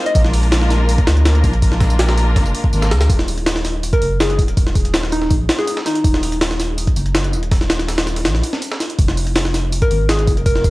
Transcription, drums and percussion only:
0.06 closed hi-hat
0.15 kick, open hi-hat, tambourine
0.25 snare
0.33 open hi-hat, tambourine
0.43 closed hi-hat
0.52 snare, open hi-hat
0.61 snare
0.70 snare, open hi-hat, tambourine
0.89 open hi-hat, tambourine
0.98 kick, closed hi-hat
1.07 snare, open hi-hat, tambourine
1.17 closed hi-hat
1.25 snare, open hi-hat, tambourine
1.35 closed hi-hat
1.44 kick, open hi-hat, tambourine
1.53 closed hi-hat
1.62 kick, open hi-hat, tambourine
1.72 snare
1.80 kick, snare, open hi-hat
1.90 closed hi-hat, tambourine
1.99 snare, open hi-hat
2.08 snare
2.17 open hi-hat, tambourine
2.36 kick, snare, open hi-hat
2.46 tambourine
2.55 open hi-hat
2.64 kick
2.73 open hi-hat, tambourine
2.82 snare, tambourine
2.91 snare, closed hi-hat, open hi-hat
3.01 snare, open hi-hat, tambourine
3.10 kick, open hi-hat, tambourine
3.19 snare
3.28 open hi-hat, tambourine
3.38 closed hi-hat
3.46 snare, open hi-hat
3.56 snare
3.65 snare, open hi-hat, tambourine
3.83 open hi-hat, tambourine
3.93 kick, closed hi-hat
4.02 open hi-hat
4.20 snare, open hi-hat, tambourine
4.30 closed hi-hat
4.39 kick, open hi-hat, tambourine
4.48 closed hi-hat
4.57 kick, open hi-hat, tambourine
4.67 snare
4.75 kick, open hi-hat, tambourine
4.85 closed hi-hat
4.94 snare, open hi-hat, tambourine
5.03 snare
5.12 open hi-hat, tambourine
5.22 snare
5.31 kick, open hi-hat, tambourine
5.49 snare, open hi-hat, tambourine
5.59 snare
5.67 open hi-hat, tambourine
5.77 snare
5.86 snare, open hi-hat, tambourine
5.95 closed hi-hat
6.04 kick, open hi-hat, tambourine
6.14 snare
6.23 open hi-hat, tambourine
6.32 closed hi-hat
6.41 snare, open hi-hat
6.51 snare
6.60 snare, open hi-hat, tambourine
6.78 open hi-hat, tambourine
6.87 kick, closed hi-hat
6.96 open hi-hat, tambourine
7.06 closed hi-hat
7.15 snare, open hi-hat, tambourine
7.24 closed hi-hat
7.33 tambourine
7.43 closed hi-hat
7.51 kick, snare, open hi-hat
7.61 snare
7.70 snare, open hi-hat, tambourine
7.79 snare, closed hi-hat
7.88 snare, open hi-hat, tambourine
7.98 snare, open hi-hat
8.07 snare, tambourine
8.16 snare, open hi-hat
8.25 snare, open hi-hat, tambourine
8.35 snare
8.43 open hi-hat, tambourine
8.53 snare
8.62 open hi-hat, tambourine
8.72 snare
8.80 snare, open hi-hat, tambourine
8.90 closed hi-hat
8.99 kick, open hi-hat, tambourine
9.08 snare
9.17 open hi-hat, tambourine
9.27 closed hi-hat
9.36 snare, open hi-hat
9.45 snare
9.54 snare, open hi-hat, tambourine
9.72 open hi-hat, tambourine
9.82 kick, closed hi-hat
9.91 open hi-hat
10.09 snare, open hi-hat, tambourine
10.19 closed hi-hat
10.27 kick, open hi-hat, tambourine
10.37 closed hi-hat
10.46 kick, open hi-hat, tambourine
10.55 snare
10.64 kick, open hi-hat, tambourine

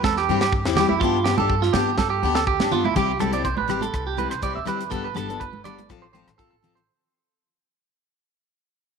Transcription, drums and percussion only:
0.04 kick, snare, high conga
0.17 snare
0.41 snare
0.52 kick
0.65 snare
0.75 snare, low conga
0.89 high conga
1.01 kick
1.26 snare
1.38 high conga, low conga
1.50 kick
1.62 snare
1.74 snare, high conga, low conga
1.98 kick, snare, high conga
2.35 snare
2.47 kick
2.60 snare, high conga
2.71 low conga
2.85 high conga
2.95 kick, closed hi-hat, low conga
3.20 cross-stick, closed hi-hat, high conga
3.33 closed hi-hat
3.45 kick, closed hi-hat
3.57 high conga
3.69 cross-stick, closed hi-hat, low conga
3.81 closed hi-hat, high conga
3.94 kick, cross-stick, closed hi-hat
4.18 closed hi-hat, high conga
4.31 cross-stick, closed hi-hat
4.43 kick, closed hi-hat
4.66 cross-stick, closed hi-hat, low conga
4.80 closed hi-hat
4.91 kick, closed hi-hat, low conga
5.15 cross-stick, closed hi-hat, high conga
5.30 closed hi-hat
5.41 kick, closed hi-hat
5.53 high conga
5.65 cross-stick, closed hi-hat, low conga
5.79 closed hi-hat, high conga
5.90 kick, cross-stick, closed hi-hat
6.14 closed hi-hat, high conga
6.28 cross-stick, closed hi-hat
6.39 kick, closed hi-hat
6.64 closed hi-hat, low conga
6.77 closed hi-hat

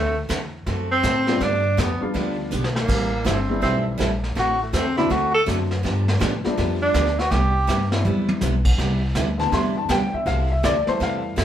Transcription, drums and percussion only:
0.30 kick, snare, hi-hat pedal
0.66 brush sweep, kick, snare
1.03 kick, snare, hi-hat pedal
1.27 snare
1.41 brush sweep, kick, snare
1.78 kick, snare, hi-hat pedal
2.15 brush sweep, kick, snare
2.52 hi-hat pedal
2.64 snare
2.76 snare
2.89 brush sweep, kick, snare, crash
3.26 kick, snare, hi-hat pedal
3.63 brush sweep, kick, snare
4.00 kick, snare, hi-hat pedal
4.24 snare
4.36 brush sweep, kick, snare
4.73 kick, snare, hi-hat pedal
4.97 snare
5.10 brush sweep, kick, snare
5.47 kick, snare, hi-hat pedal
5.71 snare
5.84 brush sweep, kick, snare
6.08 snare
6.21 kick, snare, hi-hat pedal
6.44 snare
6.58 brush sweep, kick, snare
6.94 kick, snare, hi-hat pedal
7.06 snare
7.19 snare
7.31 brush sweep, kick, snare
7.69 snare, hi-hat pedal
7.92 snare
8.05 high tom
8.29 high tom
8.41 snare, hi-hat pedal
8.65 kick, crash
8.78 brush sweep, kick, snare
9.15 kick, snare, hi-hat pedal
9.39 snare
9.52 brush sweep, kick, snare
9.89 kick, snare, hi-hat pedal
10.26 brush sweep, kick, snare
10.63 kick, snare, hi-hat pedal
10.87 snare
11.00 brush sweep, kick, snare
11.37 kick, snare, hi-hat pedal

